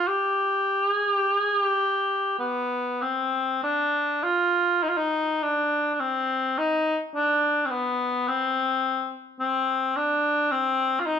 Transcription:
0.07 0.92 G4 medium
0.92 1.10 G#4 medium
1.10 1.39 G4 medium
1.39 1.56 G#4 medium
1.56 2.39 G4 medium
2.39 3.03 B3 medium
3.02 3.63 C4 medium
3.64 4.25 D4 medium
4.24 4.85 F4 medium
4.83 4.90 D#4 medium
4.89 4.99 F4 medium
4.97 5.44 D#4 medium
5.43 5.94 D4 medium
5.94 6.02 D4 soft
6.00 6.60 C4 medium
6.58 6.98 D#4 medium
7.15 7.67 D4 medium
7.66 7.72 C4 medium
7.70 8.30 B3 medium
8.28 9.15 C4 medium
9.40 9.98 C4 medium
9.97 10.53 D4 medium
10.52 11.02 C4 medium
11.00 11.07 F4 medium
11.06 11.20 D#4 medium

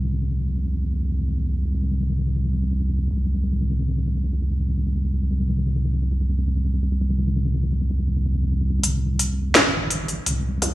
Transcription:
0.00 3.11 C2 medium
3.13 8.82 C2 medium
8.84 9.54 C2 loud
8.84 closed hi-hat medium
9.19 closed hi-hat medium
9.55 10.18 G1 medium
9.55 snare loud
9.55 closed hi-hat medium
9.91 closed hi-hat medium
10.08 closed hi-hat soft
10.26 10.74 C2 loud
10.26 closed hi-hat medium
10.62 closed hi-hat medium
10.62 mid tom medium

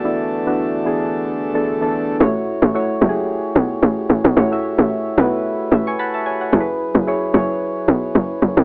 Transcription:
0.00 2.16 E2 medium
0.00 0.04 E3 medium
0.00 0.37 E3 medium
0.00 2.16 A3 medium
0.00 0.04 B3 medium
0.00 0.05 D4 medium
0.00 0.47 F#4 medium
0.00 0.86 G#4 medium
0.00 1.55 A4 loud
0.04 2.18 D3 medium
0.04 0.37 B3 medium
0.04 0.37 D4 medium
0.04 0.38 E4 medium
0.46 0.78 E3 medium
0.46 0.78 B3 medium
0.46 0.78 D4 medium
0.46 0.79 F#4 medium
0.85 1.39 E3 medium
0.85 1.39 B3 medium
0.85 1.40 D4 medium
0.85 1.40 G#4 loud
1.54 1.75 E3 medium
1.54 1.75 B3 medium
1.54 1.76 D4 medium
1.54 1.76 A4 medium
1.81 2.13 E3 medium
1.81 2.13 B3 medium
1.81 2.13 D4 medium
1.81 2.14 A4 medium
2.20 2.59 A1 loud
2.20 2.65 A3 medium
2.20 2.65 E4 medium
2.20 2.65 F#4 medium
2.20 2.65 C#5 loud
2.62 2.98 A1 loud
2.74 2.96 A3 medium
2.74 2.97 E4 medium
2.74 2.97 F#4 medium
2.74 2.97 C#5 loud
3.01 3.40 F#1 loud
3.01 3.88 A3 medium
3.01 3.89 E4 medium
3.01 3.89 F#4 medium
3.01 3.09 G4 medium
3.09 3.92 G#4 loud
3.56 3.81 B1 medium
3.83 4.08 A1 loud
4.10 4.23 A1 medium
4.25 4.36 B1 loud
4.36 4.75 A1 loud
4.36 4.48 A3 medium
4.36 4.49 E4 medium
4.36 4.49 F#4 medium
4.36 4.49 C#5 medium
4.51 5.05 A3 medium
4.51 5.06 E4 medium
4.51 5.06 F#4 medium
4.51 5.06 E5 medium
4.79 5.15 A1 loud
5.17 5.56 B1 loud
5.17 6.05 A3 medium
5.17 6.05 E4 medium
5.17 6.05 F#4 medium
5.17 6.05 B4 loud
5.72 5.97 A1 medium
5.72 5.97 E5 medium
5.87 5.99 G#5 medium
5.87 5.98 C#6 medium
5.99 6.13 F#5 medium
5.99 6.13 A5 medium
5.99 6.13 B5 medium
6.14 6.26 E5 medium
6.14 6.25 A5 medium
6.26 6.40 C#5 medium
6.26 6.40 G#5 medium
6.41 6.67 C#5 medium
6.41 6.67 F#5 medium
6.52 6.92 F#1 loud
6.52 6.97 F#3 medium
6.52 6.97 E4 medium
6.52 6.97 G#4 medium
6.52 6.61 A4 medium
6.60 7.01 B4 loud
6.95 7.31 F#1 loud
7.07 7.29 F#3 medium
7.07 7.29 E4 medium
7.07 7.29 G#4 medium
7.07 7.30 C#5 loud
7.34 7.73 F#1 loud
7.34 8.21 F#3 medium
7.34 8.21 E4 medium
7.34 8.21 G#4 medium
7.34 8.21 C#5 loud
7.88 8.13 B1 medium
8.15 8.40 F#1 loud
8.42 8.56 F#1 medium
8.57 8.64 B1 loud

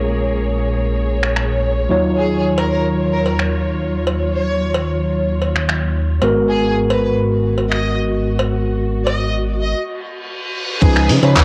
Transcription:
0.00 1.88 A#1 medium
0.00 1.87 G#3 medium
0.00 1.86 A#3 medium
0.00 1.87 C#4 medium
0.00 1.87 F4 medium
0.00 1.86 G#4 medium
0.00 1.88 A#4 medium
0.00 6.19 C#5 medium
1.23 finger snap soft
1.36 finger snap medium
1.89 6.20 D#2 medium
1.89 6.19 F#3 medium
1.89 6.19 D#4 medium
1.89 6.19 F4 medium
1.89 6.20 F4 medium
1.89 6.20 C#5 medium
2.17 2.40 G#4 medium
2.58 2.67 A#4 medium
2.58 cowbell medium
2.72 2.80 A#4 medium
3.13 3.21 A#4 medium
3.25 3.34 A#4 medium
3.25 cowbell medium
3.39 finger snap medium
4.07 cowbell medium
4.34 4.88 C#5 medium
4.74 cowbell medium
5.42 cowbell medium
5.55 finger snap medium
5.69 finger snap medium
6.22 9.74 G#1 medium
6.22 9.74 G#3 medium
6.22 9.74 B3 medium
6.22 10.78 F#4 medium
6.22 9.74 F#4 medium
6.22 9.75 A#4 medium
6.22 cowbell medium
6.50 6.72 G#4 medium
6.90 6.99 B4 medium
6.90 cowbell medium
7.04 7.13 B4 medium
7.58 cowbell soft
7.72 7.94 D#5 medium
7.72 finger snap medium
8.39 cowbell medium
9.07 9.29 D#5 medium
9.07 cowbell medium
9.62 9.75 D#5 medium
9.74 reverse cymbal medium
10.82 11.11 C#2 loud
10.82 11.19 F3 medium
10.82 11.44 F3 medium
10.82 11.20 C#4 medium
10.82 11.44 D#4 medium
10.82 11.20 D#4 medium
10.82 11.05 G#4 medium
10.82 11.44 B4 medium
10.82 11.20 B4 medium
10.82 kick loud
10.82 closed hi-hat medium
10.82 crash loud
10.82 downlifter medium
10.96 finger snap medium
10.96 closed hi-hat soft
11.09 11.19 C#3 loud
11.09 open hi-hat loud
11.22 11.38 C#3 medium
11.22 11.44 F3 medium
11.22 11.44 C#4 medium
11.22 11.44 D#4 medium
11.22 11.32 B4 medium
11.22 11.44 C#5 medium
11.22 closed hi-hat soft
11.22 cowbell medium
11.36 11.44 C#2 medium
11.36 11.44 B4 medium
11.36 kick loud
11.36 clap loud

